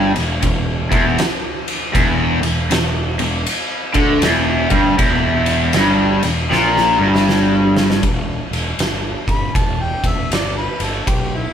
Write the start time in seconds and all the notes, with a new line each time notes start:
Already playing: G1 G2
0.15 E1 E2, ride
0.42 E1 E2, kick, ride
0.91 E1 E2, kick, ride
1.18 snare, ride
1.68 ride
1.93 E1 E2, kick, ride
2.42 E1 E2, ride
2.71 E1 E2, snare, ride
3.19 E1 E2, ride
3.47 ride
3.94 D2 D3, kick, ride
4.22 E1 E2, snare, ride
4.70 G1 G2, kick, ride
4.97 E1 E2, kick, ride
5.46 ride
5.73 G1 G2, snare, ride
6.23 E1 E2, ride
6.50 A#1 A#2, snare
6.77 snare
6.98 G1 G2
7.15 snare
7.29 snare
7.77 snare
7.90 snare
8.03 E1, kick, ride
8.51 E1, ride
8.79 G1, snare, ride
9.27 G1 B5, kick, ride
9.55 E1 A5, kick, ride
9.82 G5
10.04 E1, kick, ride
10.09 E5
10.31 G1 D5, snare, ride
10.58 B4
10.80 G1, ride
10.84 A4
11.07 B1 G4, kick, ride
11.35 E4